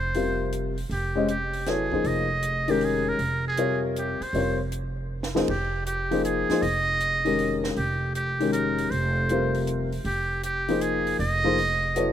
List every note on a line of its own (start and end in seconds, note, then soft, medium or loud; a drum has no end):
0.00 0.86 F1 medium
0.00 0.53 C5 medium
0.14 0.73 C3 soft
0.14 0.73 G3 soft
0.14 0.73 F4 soft
0.14 0.73 A#4 soft
0.14 0.73 C5 medium
0.14 open hi-hat soft
0.52 closed hi-hat soft
0.77 open hi-hat soft
0.89 2.00 F1 medium
0.89 1.27 G4 medium
0.89 open hi-hat soft
1.15 1.27 G#3 medium
1.15 1.27 C#4 medium
1.15 1.28 G4 medium
1.15 1.28 C5 medium
1.15 1.28 D#5 medium
1.28 1.70 G4 medium
1.28 closed hi-hat soft
1.53 open hi-hat soft
1.66 1.89 F#3 soft
1.66 1.89 B3 soft
1.66 1.90 E4 soft
1.66 2.08 G#4 medium
1.66 1.90 A4 soft
1.66 1.90 C#5 medium
1.66 snare soft
1.66 closed hi-hat soft
1.92 2.25 F3 soft
1.92 2.25 A#3 soft
1.92 2.25 D#4 soft
1.92 2.26 G#4 soft
1.92 2.26 C5 medium
1.92 kick soft
2.04 3.15 F1 medium
2.04 2.73 D#5 medium
2.04 open hi-hat soft
2.42 closed hi-hat soft
2.68 3.16 D#3 medium
2.68 3.17 G#3 medium
2.68 3.17 C#4 medium
2.68 3.17 G4 soft
2.68 2.86 G4 medium
2.68 3.17 A#4 medium
2.68 open hi-hat soft
2.81 3.10 G#4 medium
2.81 open hi-hat soft
3.09 3.46 A#4 medium
3.19 4.16 F1 medium
3.19 open hi-hat soft
3.48 3.82 G#4 medium
3.57 4.16 C3 medium
3.57 4.16 G3 medium
3.57 4.16 F4 medium
3.57 4.16 A#4 medium
3.57 4.16 C#5 medium
3.57 closed hi-hat soft
3.96 4.24 G4 medium
3.96 closed hi-hat soft
4.20 4.60 C5 medium
4.20 muted upright bass stroke soft
4.20 open hi-hat soft
4.33 5.44 F1 medium
4.33 4.56 G3 medium
4.33 4.57 C4 soft
4.33 4.57 F4 soft
4.33 4.57 A#4 soft
4.33 4.57 C#5 medium
4.33 open hi-hat soft
4.72 closed hi-hat soft
5.23 snare soft
5.35 5.47 F3 medium
5.35 5.47 A#3 medium
5.35 5.47 D#4 medium
5.35 5.47 G#4 medium
5.35 5.48 C5 medium
5.35 snare medium
5.48 6.45 F1 medium
5.48 5.85 G4 medium
5.48 kick medium
5.48 ride medium
5.86 6.22 G4 medium
5.86 closed hi-hat soft
6.11 6.47 F3 medium
6.11 6.47 A#3 medium
6.11 6.47 D#4 soft
6.11 6.47 G#4 medium
6.11 6.48 C5 medium
6.11 open hi-hat soft
6.25 6.64 G#4 medium
6.25 closed hi-hat soft
6.49 6.62 F3 medium
6.49 6.62 A#3 medium
6.49 6.62 D#4 medium
6.49 6.62 G#4 medium
6.49 6.62 C5 medium
6.49 muted upright bass stroke soft
6.49 snare soft
6.49 open hi-hat soft
6.62 7.73 F1 medium
6.62 7.64 D#5 loud
6.62 open hi-hat soft
7.00 closed hi-hat soft
7.25 7.74 D#3 medium
7.25 7.74 G#3 soft
7.25 7.74 C#4 soft
7.25 7.74 G4 soft
7.25 7.75 A#4 medium
7.25 open hi-hat soft
7.38 open hi-hat soft
7.64 snare soft
7.76 8.87 F1 medium
7.76 8.12 G4 medium
7.76 open hi-hat soft
8.15 8.51 G4 medium
8.15 closed hi-hat soft
8.40 8.89 D#3 medium
8.40 8.89 G#3 medium
8.40 8.89 C#4 soft
8.40 8.89 G4 medium
8.40 8.90 A#4 medium
8.40 open hi-hat soft
8.53 8.92 A#4 medium
8.53 closed hi-hat soft
8.78 open hi-hat soft
8.91 10.01 F1 medium
8.91 9.62 C5 medium
8.91 open hi-hat soft
9.29 9.88 C3 medium
9.29 9.88 G3 medium
9.29 9.88 F4 medium
9.29 9.88 A#4 medium
9.29 9.89 C5 medium
9.29 closed hi-hat soft
9.54 open hi-hat soft
9.67 closed hi-hat soft
9.92 open hi-hat soft
10.05 11.15 F1 medium
10.05 10.41 G4 medium
10.05 open hi-hat soft
10.43 10.83 G4 medium
10.43 closed hi-hat soft
10.68 11.17 F3 medium
10.68 11.17 A#3 soft
10.68 11.18 D#4 soft
10.68 11.18 G#4 soft
10.68 11.18 C5 medium
10.68 open hi-hat soft
10.81 11.20 G#4 medium
10.81 closed hi-hat soft
11.07 open hi-hat soft
11.19 12.12 F1 medium
11.19 12.12 D#5 loud
11.19 open hi-hat soft
11.44 11.56 F3 medium
11.44 11.56 A#3 medium
11.44 11.56 D#4 medium
11.44 11.57 G#4 medium
11.44 11.57 C5 medium
11.58 open hi-hat soft
11.96 12.12 F#3 medium
11.96 12.12 B3 soft
11.96 12.12 E4 soft
11.96 12.12 A4 soft
11.96 12.12 C#5 medium
11.96 closed hi-hat soft